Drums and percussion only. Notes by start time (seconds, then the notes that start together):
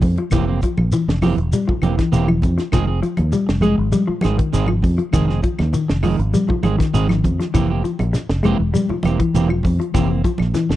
0.01 kick, open hi-hat, low conga, shekere
0.17 closed hi-hat
0.31 kick, closed hi-hat, claves, shekere
0.62 kick, closed hi-hat, shekere
0.77 high conga, claves
0.92 closed hi-hat, shekere
1.09 snare
1.22 open hi-hat, high conga, low conga, claves, shekere
1.38 closed hi-hat
1.53 closed hi-hat, shekere
1.69 kick, low conga
1.82 closed hi-hat, high conga, claves, shekere
1.99 kick, snare, closed hi-hat
2.13 closed hi-hat, shekere
2.28 high conga, claves
2.42 kick, closed hi-hat, low conga, shekere
2.58 snare, closed hi-hat
2.72 kick, snare, closed hi-hat, claves, shekere
3.03 closed hi-hat, shekere
3.17 closed hi-hat, high conga, claves
3.32 closed hi-hat, shekere
3.49 snare
3.61 closed hi-hat, high conga, low conga, claves, shekere
3.92 closed hi-hat, high conga, shekere
4.21 snare, closed hi-hat, high conga, claves, shekere
4.39 kick, closed hi-hat
4.54 closed hi-hat, shekere
4.66 high conga, claves
4.82 kick, open hi-hat, low conga, shekere
4.99 closed hi-hat
5.13 kick, closed hi-hat, claves, shekere
5.29 snare
5.43 kick, closed hi-hat, shekere
5.59 snare, high conga, claves
5.74 closed hi-hat, shekere
5.89 snare
6.03 open hi-hat, high conga, low conga, claves, shekere
6.19 closed hi-hat
6.33 closed hi-hat, high conga, shekere
6.49 kick, low conga
6.63 closed hi-hat, high conga, claves, shekere
6.80 kick, snare, closed hi-hat
6.95 closed hi-hat, shekere
7.09 snare, high conga, claves
7.24 kick, closed hi-hat, high conga, low conga, shekere
7.40 snare, closed hi-hat
7.55 kick, closed hi-hat, claves, shekere
7.85 closed hi-hat, shekere
7.99 closed hi-hat, high conga, claves
8.14 snare, closed hi-hat, shekere
8.29 snare
8.43 closed hi-hat, high conga, low conga, claves, shekere
8.74 closed hi-hat, high conga, shekere
8.89 low conga
9.03 closed hi-hat, high conga, claves, shekere
9.20 kick, closed hi-hat
9.34 closed hi-hat, shekere
9.49 high conga, claves
9.63 kick, open hi-hat, low conga, shekere
9.81 closed hi-hat
9.94 kick, closed hi-hat, claves, shekere
10.24 kick, closed hi-hat, shekere
10.38 snare, high conga, claves
10.55 snare, closed hi-hat, shekere
10.70 snare